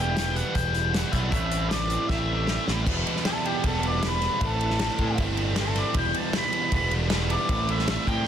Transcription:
Already playing: picked electric bass E1, overdriven electric guitar E2 B2 E3 G3 B3 E4 G4, lead electric guitar G5
0.16 overdriven electric guitar G3, snare, closed hi-hat
0.36 overdriven electric guitar B3, lead electric guitar F#5, closed hi-hat
0.55 picked electric bass E1, overdriven electric guitar F#4, lead electric guitar G5, kick, closed hi-hat
0.74 overdriven electric guitar B3, closed hi-hat
0.93 overdriven electric guitar F#4, lead electric guitar F#5, snare, closed hi-hat
1.12 picked electric bass B1, overdriven electric guitar E2 B2 E3 G3 B3 E4, lead electric guitar E5, kick, closed hi-hat
1.31 picked electric bass A1, overdriven electric guitar A2 E3 A3 C4 E4, lead electric guitar E5, kick, closed hi-hat
1.50 overdriven electric guitar E3, closed hi-hat
1.70 overdriven electric guitar G3, lead electric guitar D5, snare, closed hi-hat
1.89 overdriven electric guitar C4, closed hi-hat
2.08 picked electric bass A1, overdriven electric guitar G4, lead electric guitar E5, kick, snare
2.27 overdriven electric guitar C4
2.46 overdriven electric guitar G4, snare
2.67 picked electric bass A1, overdriven electric guitar A2 E3 G3 A3 C4 E4, snare
2.85 picked electric bass E1, overdriven electric guitar E2 B2 E3 G3 B3 E4, kick, crash
3.06 overdriven electric guitar B2, ride
3.16 snare
3.25 overdriven electric guitar G3, lead electric guitar A4, snare, ride
3.45 overdriven electric guitar B3, lead electric guitar G4, ride
3.63 picked electric bass E1, overdriven electric guitar E3, lead electric guitar A4, kick, ride
3.83 overdriven electric guitar G3, lead electric guitar D5, ride
4.02 overdriven electric guitar B3, snare, ride
4.07 lead electric guitar B4
4.21 overdriven electric guitar E3, snare, ride
4.39 picked electric bass A1, overdriven electric guitar A2 E3 A3 C4 E4, kick, ride
4.46 lead electric guitar A4
4.59 overdriven electric guitar E3, ride
4.70 snare
4.78 overdriven electric guitar G3, snare, ride
4.98 picked electric bass A2, overdriven electric guitar C4, kick, ride
5.18 picked electric bass G1, overdriven electric guitar E3, kick, ride
5.35 overdriven electric guitar G3, ride
5.54 overdriven electric guitar C4, snare, ride
5.60 lead electric guitar A4
5.74 overdriven electric guitar E3, lead electric guitar D5, snare, ride
5.92 picked electric bass E1, overdriven electric guitar E2 B2 E3 G3, kick, ride
5.97 overdriven electric guitar B3 E4, lead electric guitar G5
6.13 overdriven electric guitar B2, ride
6.17 lead electric guitar A5
6.33 overdriven electric guitar G3, lead electric guitar B5, snare, ride
6.52 overdriven electric guitar B3, ride
6.71 picked electric bass E1, overdriven electric guitar E3, lead electric guitar B5, kick, ride
6.91 overdriven electric guitar G3, ride
7.10 overdriven electric guitar B3, snare, ride
7.29 overdriven electric guitar E3, lead electric guitar D5, ride
7.48 picked electric bass A1, overdriven electric guitar A2 E3 A3 C4 E4, kick, ride
7.67 overdriven electric guitar E3, lead electric guitar E5, ride
7.79 snare
7.87 overdriven electric guitar G3, lead electric guitar E5, snare, ride
8.07 picked electric bass A2, overdriven electric guitar C4, lead electric guitar G5, kick, ride

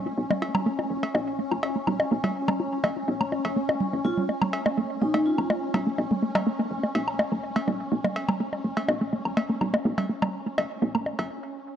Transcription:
Already playing: synth drone C#4
0.06 synth arpeggio sound F4
0.18 fm bass A#1
0.30 synth arpeggio sound A#3, high bongo, low conga
0.42 synth arpeggio sound F4, cowbell
0.55 low conga, low woodblock
0.66 synth arpeggio sound A#3
0.79 synth arpeggio sound F4, high bongo
0.90 fm bass F1
1.03 synth arpeggio sound A#3, cowbell
1.14 fm bass A#1, synth arpeggio sound F4, high bongo
1.39 synth arpeggio sound A#3
1.51 fm bass F1, synth arpeggio sound F4, low woodblock
1.63 cowbell, high bongo
1.76 synth arpeggio sound A#3
1.87 fm bass A#1, synth arpeggio sound F4, low conga, low woodblock
2.00 high bongo
2.11 fm bass A#1, synth arpeggio sound A#3
2.24 synth arpeggio sound F4, cowbell, low conga
2.48 synth arpeggio sound A#3, high bongo, low conga, low woodblock
2.60 synth arpeggio sound F4
2.84 fm bass F1, synth arpeggio sound A#3, cowbell, high bongo
2.96 synth arpeggio sound F4
3.08 fm bass A#1
3.21 synth arpeggio sound A#3, low woodblock
3.32 synth arpeggio sound F4, high bongo
3.45 fm bass F1, cowbell
3.56 synth arpeggio sound A#3
3.69 synth arpeggio sound F4, high bongo
3.81 low conga
3.93 fm bass G#1, synth arpeggio sound A#3
4.05 fm bass A#1, synth arpeggio sound A#3, vibraphone F4
4.18 low conga
4.29 synth arpeggio sound A#3, high bongo
4.42 synth arpeggio sound A#3, low conga, low woodblock
4.53 cowbell
4.66 synth arpeggio sound A#3, high bongo
4.77 fm bass F1, synth arpeggio sound A#3
5.01 fm bass A#1, synth arpeggio sound A#3, vibraphone D#4
5.14 synth arpeggio sound A#3, vibraphone D#4, cowbell, high bongo
5.26 vibraphone F4
5.38 fm bass F1, synth arpeggio sound A#3, low woodblock
5.50 synth arpeggio sound A#3, high bongo
5.74 fm bass A#1, synth arpeggio sound A#3, cowbell, low conga, low woodblock
5.87 synth arpeggio sound A#3
5.98 fm bass A#1, high bongo
6.11 synth arpeggio sound A#3, low conga
6.22 synth arpeggio sound A#3
6.35 cowbell, high bongo, low conga, low woodblock
6.47 synth arpeggio sound A#3
6.59 synth arpeggio sound A#3
6.71 fm bass F1
6.83 synth arpeggio sound A#3, high bongo
6.95 fm bass A#1, synth arpeggio sound A#3, cowbell
7.08 low woodblock
7.19 synth arpeggio sound A#3, high bongo
7.32 fm bass F1, synth arpeggio sound A#3
7.56 synth arpeggio sound A#3, cowbell
7.68 fm bass A#1, synth arpeggio sound A#3, high bongo, low conga
7.92 fm bass A#1, synth arpeggio sound A#3
8.04 synth arpeggio sound A#3, high bongo, low conga
8.16 cowbell
8.29 synth arpeggio sound A#3, low conga, low woodblock
8.40 synth arpeggio sound A#3
8.53 high bongo
8.64 fm bass F1, synth arpeggio sound A#3
8.77 synth arpeggio sound A#3, cowbell
8.88 fm bass A#1, high bongo
9.01 synth arpeggio sound A#3
9.13 synth arpeggio sound A#3
9.25 fm bass F1, low woodblock
9.37 synth arpeggio sound A#3, cowbell, high bongo
9.50 synth arpeggio sound A#3
9.61 fm bass A#1, low conga, low woodblock
9.74 synth arpeggio sound A#3, high bongo
9.85 fm bass A#1, synth arpeggio sound A#3
9.98 cowbell, low conga
10.09 synth arpeggio sound A#3
10.22 synth arpeggio sound A#3, high bongo, low conga, low woodblock
10.46 synth arpeggio sound A#3
10.58 fm bass F1, synth arpeggio sound A#3, cowbell, high bongo
10.82 fm bass A#1, synth arpeggio sound A#3
10.95 synth arpeggio sound A#3, low woodblock
11.06 high bongo
11.19 fm bass F1, synth arpeggio sound F4, cowbell

